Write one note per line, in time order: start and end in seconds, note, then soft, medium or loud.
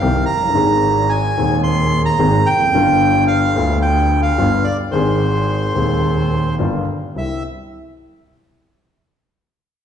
0.00 0.24 C2 medium
0.00 0.24 C3 medium
0.00 0.24 D#3 medium
0.00 0.24 G3 medium
0.00 0.24 C4 medium
0.00 0.24 G4 medium
0.00 0.24 F5 medium
0.26 0.56 F#1 medium
0.26 1.12 A#5 medium
0.36 0.43 F1 soft
0.42 0.49 F#1 medium
0.49 0.56 G1 medium
0.53 1.33 G#1 medium
0.53 1.34 G#1 loud
0.53 1.33 G#2 medium
0.53 1.32 D#3 medium
0.53 1.33 G#3 medium
0.53 1.34 C4 medium
0.53 1.34 G#4 medium
1.09 1.61 G#5 medium
1.36 2.15 D#1 medium
1.36 2.16 D#2 medium
1.36 2.16 D#2 loud
1.36 2.14 D#3 medium
1.36 2.15 G#3 medium
1.36 2.16 C4 medium
1.40 2.16 G#4 medium
1.63 2.02 C6 medium
2.05 2.48 A#5 medium
2.19 2.42 G#1 medium
2.19 2.43 G#1 medium
2.19 2.42 G#2 medium
2.19 2.42 D#3 medium
2.19 2.43 G#3 medium
2.19 2.42 C4 medium
2.19 2.43 G#4 medium
2.46 2.75 F1 medium
2.46 3.25 G5 loud
2.53 2.60 E2 soft
2.60 2.67 F2 medium
2.67 2.74 F#2 medium
2.72 3.52 G1 medium
2.72 3.53 G1 loud
2.72 3.52 G2 medium
2.72 3.51 D3 medium
2.72 3.52 G3 medium
2.72 3.52 B3 medium
2.77 3.53 F4 medium
3.27 3.79 F5 medium
3.54 4.34 D2 medium
3.54 4.35 D2 loud
3.54 3.55 D3 medium
3.54 4.34 D3 medium
3.54 4.33 G3 medium
3.54 4.34 B3 medium
3.58 4.35 F4 medium
3.82 4.21 G5 medium
4.23 4.66 F5 medium
4.38 4.61 G1 medium
4.38 4.61 G1 loud
4.38 4.61 G2 medium
4.38 4.61 D3 medium
4.38 4.61 G3 medium
4.38 4.61 B3 medium
4.38 4.61 F4 medium
4.64 4.77 D5 medium
4.91 5.72 G#1 medium
4.91 5.72 G#2 medium
4.91 5.71 D#3 medium
4.91 5.71 G#3 medium
4.91 5.72 C4 medium
4.91 5.73 G#4 medium
4.91 6.55 C5 medium
5.73 6.56 D#1 medium
5.73 6.56 D#2 medium
5.73 6.55 D#3 medium
5.73 6.55 G#3 medium
5.73 6.56 C4 medium
5.77 6.57 G#4 medium
6.59 6.84 G1 medium
6.59 6.83 G2 medium
6.59 6.83 D3 medium
6.59 6.84 G3 medium
6.59 6.84 B3 medium
6.59 6.84 F4 medium
7.16 7.40 C2 soft
7.16 7.40 G3 soft
7.16 7.40 C4 soft
7.16 7.40 E4 medium
7.16 7.43 E5 medium